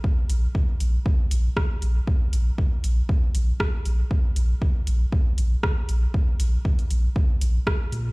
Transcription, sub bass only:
X:1
M:4/4
L:1/8
Q:"Swing 16ths" 1/4=118
K:Bblyd
V:1 name="Sub bass" clef=bass
z B,,, z B,,, z B,,, z B,,, | z B,,, z B,,, z B,,, z B,,, | z B,,, z B,,, z B,,, z B,,, | z B,,, z B,,, z B,,, z B,, |]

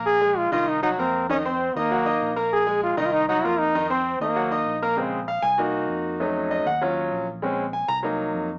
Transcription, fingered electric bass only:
X:1
M:4/4
L:1/8
Q:1/4=196
K:Bbm
V:1 name="Fingered electric bass" clef=bass
B,,,3 C,,3 F,,2- | F,,3 E,,3 B,,,2- | B,,,3 C,,3 F,,2- | F,,3 E,,3 B,,,2- |
B,,,3 C,,3 F,,2- | F,,3 E,,3 B,,,2- | B,,,3 C,,3 F,,2 |]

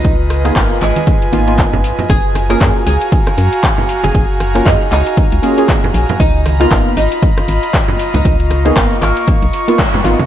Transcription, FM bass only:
X:1
M:4/4
L:1/16
Q:"Swing 16ths" 1/4=117
K:F#
V:1 name="FM bass" clef=bass
C,,4 G,,, z G,,, z3 G,,,4- G,,, z | F,,,4 F,, z C,, z3 F,, z4 F,,, | F,,,4 F,, z C,, z2 C,, z4 A,,, z | C,,4 G,,, z G,,, z3 G,,, z4 C,, |
C,,4 G,,, z G,,, z2 B,,, z4 G,,, z |]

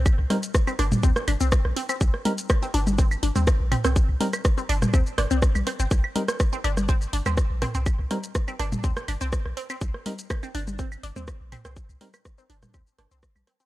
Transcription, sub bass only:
X:1
M:4/4
L:1/16
Q:1/4=123
K:Cm
V:1 name="Sub bass" clef=bass
z C,, z4 G,,, z E,, z G,,, C,, z B,,, z2 | C,, z4 z G,,,3 z G,,, E,, z B,,, z C,, | z C,, z4 G,,, z E,, z G,,, C,, z B,,, z G,,, | C,, z4 z G,,,3 z G,,, E,, z B,,, z C,, |
z C,, z4 G,,, z E,, z G,,, C,, z B,,, z2 | C,, z4 z G,,,3 z G,,, E,, z B,,, z C,, | z C,, z4 G,,, z E,, z G,,, C,, z B,,, z2 |]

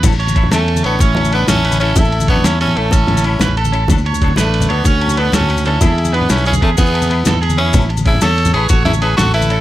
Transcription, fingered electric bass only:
X:1
M:12/8
L:1/8
Q:3/8=125
K:A
V:1 name="Fingered electric bass" clef=bass
A,,,3 E,,2 A,,, A,,,3 A,,,3 | A,,,3 E,,2 A,,, A,,,3 A,,,3 | D,,3 A,,,2 D,, D,,3 D,,3 | E,,3 B,,,2 E,, E,,3 E,,3 |
A,,,3 E,,2 A,,, A,,,3 A,,,3 |]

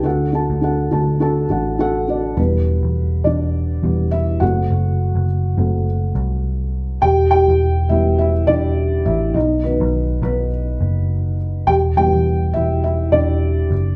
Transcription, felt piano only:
X:1
M:4/4
L:1/8
Q:"Swing 16ths" 1/4=103
K:Em
V:1 name="Felt piano"
[DFAf] [DFAa] [DFAf] [DFAa] [DFAa] [DFAf] [DFAf] [DFAd] | B3 [Dd]3 [Ee] [Ff]- | [Ff]4- [Ff] z3 | [Gg] [Gg]2 [Ee] [Ee] [Dd]2 [Ee] |
[^D^d] B2 [B,B]4 z | [Gg] [Gg]2 [Ee] [Ee] [Dd]3 |]
V:2 name="Felt piano" clef=bass
D,3 z4 z | [E,G,B,]3 z2 [E,G,B,] z [F,A,C]- | [F,A,C]2 z [F,A,C] z4 | z3 [E,G,B,] z4 |
z [^D,F,B,]3 z4 | z [E,G,B,]6 z |]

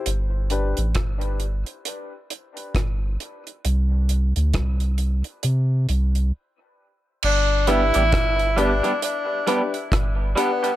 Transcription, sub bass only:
X:1
M:4/4
L:1/16
Q:"Swing 16ths" 1/4=67
K:G
V:1 name="Sub bass" clef=bass
G,,,3 A,,, G,,,3 z4 z G,,,2 z2 | C,,3 D,, C,,3 z C,2 C,,2 z4 | G,,,3 A,,, G,,,3 z4 z G,,,2 z2 |]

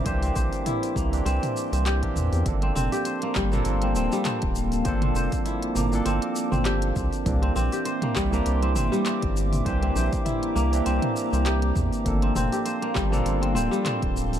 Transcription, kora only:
X:1
M:4/4
L:1/16
Q:"Swing 16ths" 1/4=100
K:Cmix
V:1 name="Kora"
c C c z E z B,2 C z2 C G z3 | z C C G c B, G, B, z C C G, C4 | c C c z E z B,2 C z2 C G z3 | z C C G c B, G, B, z C C G, C4 |
c C c z E z B,2 C z2 C G z3 | z C C G c B, G, B, z C C G, C4 |]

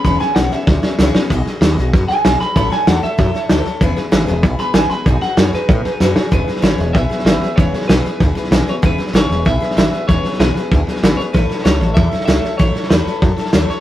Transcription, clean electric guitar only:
X:1
M:4/4
L:1/8
Q:1/4=191
K:E
V:1 name="Clean electric guitar"
b g f e4 z | z4 z g2 b | b g f e4 z | z4 z b g b |
g f c B4 c | B2 c2 e2 e2 | c2 B2 z3 c | B2 c2 e2 e2 |
c2 B2 z3 c | B2 c2 e2 e2 | c2 B2 z3 c |]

